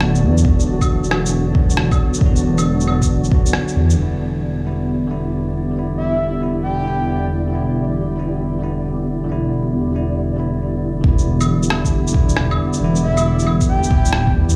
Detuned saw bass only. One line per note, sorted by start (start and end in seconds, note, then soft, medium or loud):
0.00 0.24 D1 medium
0.23 0.44 E2 loud
0.45 1.99 E1 loud
2.21 3.44 E1 loud
3.76 3.97 E2 medium
3.97 11.02 E1 medium
11.04 12.57 E1 medium
12.80 13.90 E1 loud
13.91 14.36 D1 medium
14.34 14.55 E2 loud